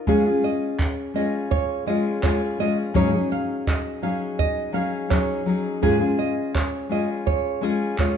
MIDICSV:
0, 0, Header, 1, 4, 480
1, 0, Start_track
1, 0, Key_signature, -5, "major"
1, 0, Tempo, 719424
1, 47, Time_signature, 4, 2, 24, 8
1, 5453, End_track
2, 0, Start_track
2, 0, Title_t, "Nylon-string guitar"
2, 0, Program_c, 0, 24
2, 58, Note_on_c, 0, 68, 94
2, 281, Note_off_c, 0, 68, 0
2, 295, Note_on_c, 0, 75, 76
2, 533, Note_off_c, 0, 75, 0
2, 533, Note_on_c, 0, 73, 70
2, 759, Note_off_c, 0, 73, 0
2, 771, Note_on_c, 0, 75, 76
2, 884, Note_off_c, 0, 75, 0
2, 1008, Note_on_c, 0, 73, 77
2, 1237, Note_off_c, 0, 73, 0
2, 1251, Note_on_c, 0, 75, 72
2, 1364, Note_off_c, 0, 75, 0
2, 1488, Note_on_c, 0, 73, 76
2, 1603, Note_off_c, 0, 73, 0
2, 1735, Note_on_c, 0, 75, 75
2, 1847, Note_off_c, 0, 75, 0
2, 1976, Note_on_c, 0, 73, 88
2, 2202, Note_off_c, 0, 73, 0
2, 2215, Note_on_c, 0, 77, 80
2, 2441, Note_off_c, 0, 77, 0
2, 2452, Note_on_c, 0, 75, 76
2, 2680, Note_off_c, 0, 75, 0
2, 2690, Note_on_c, 0, 77, 68
2, 2805, Note_off_c, 0, 77, 0
2, 2929, Note_on_c, 0, 75, 82
2, 3158, Note_off_c, 0, 75, 0
2, 3164, Note_on_c, 0, 77, 74
2, 3281, Note_off_c, 0, 77, 0
2, 3406, Note_on_c, 0, 73, 74
2, 3747, Note_off_c, 0, 73, 0
2, 3888, Note_on_c, 0, 68, 101
2, 4117, Note_off_c, 0, 68, 0
2, 4128, Note_on_c, 0, 75, 77
2, 4357, Note_off_c, 0, 75, 0
2, 4372, Note_on_c, 0, 73, 72
2, 4599, Note_off_c, 0, 73, 0
2, 4615, Note_on_c, 0, 75, 77
2, 4727, Note_off_c, 0, 75, 0
2, 4848, Note_on_c, 0, 73, 80
2, 5091, Note_off_c, 0, 73, 0
2, 5091, Note_on_c, 0, 75, 77
2, 5204, Note_off_c, 0, 75, 0
2, 5338, Note_on_c, 0, 73, 74
2, 5448, Note_off_c, 0, 73, 0
2, 5453, End_track
3, 0, Start_track
3, 0, Title_t, "Steel-string acoustic guitar"
3, 0, Program_c, 1, 25
3, 46, Note_on_c, 1, 56, 84
3, 47, Note_on_c, 1, 49, 80
3, 53, Note_on_c, 1, 61, 90
3, 56, Note_on_c, 1, 68, 92
3, 57, Note_on_c, 1, 65, 93
3, 158, Note_off_c, 1, 68, 0
3, 166, Note_on_c, 1, 68, 55
3, 167, Note_off_c, 1, 49, 0
3, 167, Note_off_c, 1, 56, 0
3, 169, Note_off_c, 1, 65, 0
3, 171, Note_off_c, 1, 61, 0
3, 177, Note_on_c, 1, 65, 50
3, 184, Note_on_c, 1, 61, 49
3, 760, Note_on_c, 1, 56, 57
3, 768, Note_off_c, 1, 61, 0
3, 769, Note_off_c, 1, 65, 0
3, 771, Note_on_c, 1, 61, 59
3, 777, Note_on_c, 1, 65, 60
3, 779, Note_off_c, 1, 68, 0
3, 781, Note_on_c, 1, 68, 61
3, 1242, Note_off_c, 1, 56, 0
3, 1244, Note_on_c, 1, 56, 67
3, 1247, Note_off_c, 1, 61, 0
3, 1250, Note_on_c, 1, 61, 69
3, 1251, Note_off_c, 1, 65, 0
3, 1259, Note_on_c, 1, 65, 74
3, 1260, Note_off_c, 1, 68, 0
3, 1263, Note_on_c, 1, 68, 73
3, 1477, Note_off_c, 1, 56, 0
3, 1485, Note_on_c, 1, 56, 68
3, 1486, Note_off_c, 1, 61, 0
3, 1489, Note_off_c, 1, 65, 0
3, 1494, Note_on_c, 1, 61, 65
3, 1497, Note_off_c, 1, 68, 0
3, 1497, Note_on_c, 1, 65, 70
3, 1507, Note_on_c, 1, 68, 74
3, 1719, Note_off_c, 1, 56, 0
3, 1727, Note_off_c, 1, 61, 0
3, 1727, Note_on_c, 1, 56, 60
3, 1731, Note_off_c, 1, 65, 0
3, 1735, Note_on_c, 1, 61, 66
3, 1737, Note_off_c, 1, 68, 0
3, 1739, Note_on_c, 1, 65, 69
3, 1745, Note_on_c, 1, 68, 68
3, 1961, Note_off_c, 1, 61, 0
3, 1961, Note_on_c, 1, 44, 83
3, 1962, Note_off_c, 1, 56, 0
3, 1963, Note_on_c, 1, 49, 96
3, 1965, Note_off_c, 1, 68, 0
3, 1965, Note_on_c, 1, 54, 95
3, 1969, Note_on_c, 1, 61, 94
3, 1971, Note_off_c, 1, 65, 0
3, 1973, Note_on_c, 1, 68, 107
3, 1974, Note_on_c, 1, 63, 90
3, 2078, Note_off_c, 1, 68, 0
3, 2084, Note_off_c, 1, 63, 0
3, 2086, Note_off_c, 1, 44, 0
3, 2086, Note_on_c, 1, 68, 53
3, 2087, Note_off_c, 1, 49, 0
3, 2088, Note_off_c, 1, 54, 0
3, 2090, Note_off_c, 1, 61, 0
3, 2092, Note_on_c, 1, 63, 51
3, 2100, Note_on_c, 1, 61, 47
3, 2104, Note_on_c, 1, 54, 45
3, 2674, Note_off_c, 1, 54, 0
3, 2682, Note_on_c, 1, 54, 61
3, 2687, Note_off_c, 1, 63, 0
3, 2688, Note_off_c, 1, 61, 0
3, 2690, Note_on_c, 1, 61, 63
3, 2695, Note_on_c, 1, 63, 68
3, 2697, Note_off_c, 1, 68, 0
3, 2700, Note_on_c, 1, 68, 68
3, 3144, Note_off_c, 1, 54, 0
3, 3152, Note_on_c, 1, 54, 72
3, 3157, Note_off_c, 1, 61, 0
3, 3158, Note_off_c, 1, 63, 0
3, 3160, Note_on_c, 1, 61, 66
3, 3166, Note_on_c, 1, 63, 66
3, 3171, Note_off_c, 1, 68, 0
3, 3173, Note_on_c, 1, 68, 65
3, 3390, Note_off_c, 1, 54, 0
3, 3398, Note_on_c, 1, 54, 58
3, 3400, Note_off_c, 1, 61, 0
3, 3408, Note_on_c, 1, 61, 69
3, 3409, Note_off_c, 1, 63, 0
3, 3412, Note_off_c, 1, 68, 0
3, 3416, Note_on_c, 1, 63, 72
3, 3420, Note_on_c, 1, 68, 71
3, 3634, Note_off_c, 1, 54, 0
3, 3642, Note_off_c, 1, 61, 0
3, 3642, Note_on_c, 1, 54, 70
3, 3644, Note_off_c, 1, 63, 0
3, 3650, Note_on_c, 1, 61, 70
3, 3652, Note_off_c, 1, 68, 0
3, 3652, Note_on_c, 1, 63, 68
3, 3660, Note_on_c, 1, 68, 72
3, 3880, Note_off_c, 1, 61, 0
3, 3882, Note_on_c, 1, 44, 87
3, 3884, Note_off_c, 1, 54, 0
3, 3885, Note_off_c, 1, 68, 0
3, 3886, Note_on_c, 1, 49, 84
3, 3887, Note_on_c, 1, 56, 92
3, 3888, Note_on_c, 1, 61, 96
3, 3891, Note_off_c, 1, 63, 0
3, 3893, Note_on_c, 1, 68, 98
3, 3894, Note_on_c, 1, 65, 93
3, 3991, Note_off_c, 1, 68, 0
3, 3999, Note_on_c, 1, 68, 57
3, 4001, Note_off_c, 1, 65, 0
3, 4006, Note_off_c, 1, 44, 0
3, 4006, Note_off_c, 1, 61, 0
3, 4009, Note_off_c, 1, 49, 0
3, 4009, Note_off_c, 1, 56, 0
3, 4009, Note_on_c, 1, 65, 52
3, 4014, Note_on_c, 1, 61, 53
3, 4021, Note_on_c, 1, 56, 41
3, 4591, Note_off_c, 1, 56, 0
3, 4599, Note_on_c, 1, 56, 59
3, 4603, Note_off_c, 1, 61, 0
3, 4605, Note_off_c, 1, 65, 0
3, 4605, Note_off_c, 1, 68, 0
3, 4606, Note_on_c, 1, 61, 69
3, 4613, Note_on_c, 1, 65, 64
3, 4616, Note_on_c, 1, 68, 65
3, 5070, Note_off_c, 1, 56, 0
3, 5078, Note_on_c, 1, 56, 67
3, 5081, Note_off_c, 1, 61, 0
3, 5083, Note_on_c, 1, 61, 69
3, 5086, Note_off_c, 1, 65, 0
3, 5086, Note_off_c, 1, 68, 0
3, 5094, Note_on_c, 1, 65, 73
3, 5094, Note_on_c, 1, 68, 72
3, 5314, Note_off_c, 1, 56, 0
3, 5320, Note_off_c, 1, 61, 0
3, 5322, Note_on_c, 1, 56, 62
3, 5328, Note_off_c, 1, 65, 0
3, 5328, Note_on_c, 1, 61, 59
3, 5331, Note_off_c, 1, 68, 0
3, 5336, Note_on_c, 1, 65, 67
3, 5342, Note_on_c, 1, 68, 72
3, 5453, Note_off_c, 1, 56, 0
3, 5453, Note_off_c, 1, 61, 0
3, 5453, Note_off_c, 1, 65, 0
3, 5453, Note_off_c, 1, 68, 0
3, 5453, End_track
4, 0, Start_track
4, 0, Title_t, "Drums"
4, 48, Note_on_c, 9, 36, 101
4, 115, Note_off_c, 9, 36, 0
4, 288, Note_on_c, 9, 54, 56
4, 354, Note_off_c, 9, 54, 0
4, 529, Note_on_c, 9, 36, 109
4, 530, Note_on_c, 9, 39, 113
4, 596, Note_off_c, 9, 36, 0
4, 597, Note_off_c, 9, 39, 0
4, 773, Note_on_c, 9, 54, 70
4, 840, Note_off_c, 9, 54, 0
4, 1011, Note_on_c, 9, 36, 98
4, 1078, Note_off_c, 9, 36, 0
4, 1251, Note_on_c, 9, 54, 58
4, 1318, Note_off_c, 9, 54, 0
4, 1488, Note_on_c, 9, 39, 106
4, 1490, Note_on_c, 9, 36, 113
4, 1555, Note_off_c, 9, 39, 0
4, 1557, Note_off_c, 9, 36, 0
4, 1734, Note_on_c, 9, 54, 65
4, 1801, Note_off_c, 9, 54, 0
4, 1970, Note_on_c, 9, 36, 109
4, 2037, Note_off_c, 9, 36, 0
4, 2213, Note_on_c, 9, 54, 61
4, 2279, Note_off_c, 9, 54, 0
4, 2451, Note_on_c, 9, 36, 108
4, 2457, Note_on_c, 9, 39, 106
4, 2518, Note_off_c, 9, 36, 0
4, 2524, Note_off_c, 9, 39, 0
4, 2692, Note_on_c, 9, 54, 65
4, 2759, Note_off_c, 9, 54, 0
4, 2931, Note_on_c, 9, 36, 99
4, 2998, Note_off_c, 9, 36, 0
4, 3173, Note_on_c, 9, 54, 63
4, 3240, Note_off_c, 9, 54, 0
4, 3410, Note_on_c, 9, 36, 117
4, 3410, Note_on_c, 9, 39, 108
4, 3477, Note_off_c, 9, 36, 0
4, 3477, Note_off_c, 9, 39, 0
4, 3652, Note_on_c, 9, 54, 65
4, 3718, Note_off_c, 9, 54, 0
4, 3890, Note_on_c, 9, 36, 101
4, 3957, Note_off_c, 9, 36, 0
4, 4129, Note_on_c, 9, 54, 59
4, 4196, Note_off_c, 9, 54, 0
4, 4371, Note_on_c, 9, 36, 97
4, 4372, Note_on_c, 9, 39, 110
4, 4438, Note_off_c, 9, 36, 0
4, 4439, Note_off_c, 9, 39, 0
4, 4609, Note_on_c, 9, 54, 64
4, 4676, Note_off_c, 9, 54, 0
4, 4851, Note_on_c, 9, 36, 97
4, 4917, Note_off_c, 9, 36, 0
4, 5091, Note_on_c, 9, 54, 63
4, 5158, Note_off_c, 9, 54, 0
4, 5326, Note_on_c, 9, 39, 102
4, 5329, Note_on_c, 9, 36, 109
4, 5393, Note_off_c, 9, 39, 0
4, 5396, Note_off_c, 9, 36, 0
4, 5453, End_track
0, 0, End_of_file